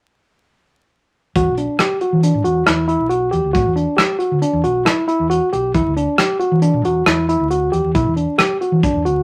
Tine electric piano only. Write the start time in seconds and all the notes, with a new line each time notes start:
1.36 F#4
1.58 D4
1.80 G4
2.01 F#4
2.23 D4
2.45 F#4
2.66 E4
2.88 E4
3.09 F#4
3.31 G4
3.53 F#4
3.76 D4
3.97 G4
4.19 F#4
4.42 D4
4.64 F#4
4.85 E4
5.08 E4
5.30 F#4
5.53 G4
5.75 E4
5.97 D4
6.18 G4
6.40 F#4
6.62 D4
6.85 F#4
7.07 E4
7.29 E4
7.51 F#4
7.72 G4
7.95 E4
8.17 D4
8.38 G4
8.61 F#4
8.84 D4
9.05 F#4